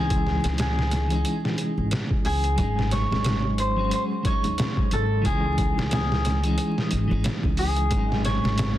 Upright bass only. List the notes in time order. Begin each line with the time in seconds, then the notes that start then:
Already playing: C#2
0.45 C#2
1.78 G#1
2.26 C#2
2.59 G#1
3.11 G#1
4.45 D#2
4.93 G#1
5.25 C#2
5.78 C#2
6.92 G#1
7.11 G#1
7.44 C#2
7.92 G#1
8.44 G#1